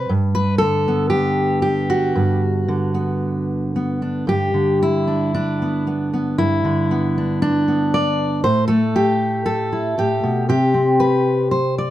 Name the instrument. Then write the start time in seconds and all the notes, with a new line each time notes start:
steel-string acoustic guitar
Already playing: G3 B4
0.09 G2
0.35 B4
0.58 D3 A4
0.88 B3
1.10 G4
1.62 G4
1.90 F#4
2.16 G2
2.68 D3
2.94 B3
3.76 B3
4.02 D4
4.27 G2 G4
4.54 D3
4.83 E4
5.08 D4
5.35 D4
5.62 B3
5.87 B3
6.14 B3
6.38 G2 E4
6.64 D3
6.91 B3
7.18 D4
7.42 D4
7.68 B3
7.94 D5
8.44 A2 C5
8.68 A3 A4
8.96 G4
9.46 A4
9.72 E4
9.98 A2 G4
10.24 B2
10.49 C3 G4
10.74 C4
11.00 B4
11.51 C5
11.78 D5